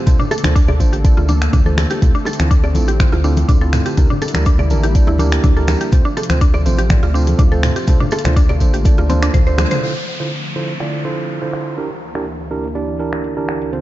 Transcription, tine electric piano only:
0.07 D4 F4 A4 C5
0.44 D4 F4 A4 C5
0.80 D4 F4 A4 C5
1.04 D4 F4 A4 D5
1.66 D4 F4 A4 C5
2.02 C4 E4 F4 A4
2.39 C4 E4 F4 A4
2.75 C4 E4 F4 A4
3.00 C4 E4 F4 C5
3.24 C4 E4 F4 A4
3.62 C4 E4 F4 A4
3.98 D4 E4 G4 A#4
4.35 D4 E4 G4 A#4
4.71 D4 E4 G4 A#4
4.95 D4 E4 G4 D5
5.19 D4 E4 G4 A#4
5.57 D4 E4 G4 A#4
5.92 C4 F4 A4 C5
6.30 C4 F4 A4 C5
6.66 C4 F4 A4 C5
6.90 C4 F4 A4 D5
7.14 C4 F4 A4 C5
7.52 C4 F4 A4 C5
7.88 D4 F4 A4 C5
8.25 D4 F4 A4 C5
8.61 D4 F4 A4 C5
8.85 D4 F4 A4 D5
9.10 D4 F4 A4 C5
9.47 D4 F4 A4 C5
9.83 D3 E4 F4 A4 C5
10.20 D3 E4 F4 A4 C5
10.56 D3 E4 F4 A4 C5
10.80 D3 E4 F4 A4 D5
11.05 D3 E4 F4 A4 C5
11.42 D3 E4 F4 A4 C5
11.78 D4 E4 G4 A#4
12.15 D4 E4 G4 A#4
12.51 D4 E4 G4 A#4
12.75 D4 E4 G4 D5
13.00 D4 E4 G4 A#4
13.37 D4 E4 G4 A#4
13.73 D3 C4 F4 A4 C5

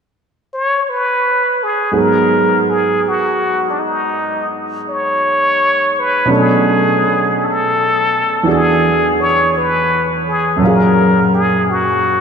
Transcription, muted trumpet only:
0.54 C#5
0.89 B4
1.63 G#4
1.98 A#4
2.70 G#4
3.08 F#4
3.70 D4
3.79 D#4
4.89 C#5
5.99 B4
6.36 G#4
7.37 G#4
7.44 A4
8.50 G#4
9.20 C#5
9.58 B4
10.28 G#4
10.58 A4
10.65 A#4
11.34 G#4
11.71 F#4

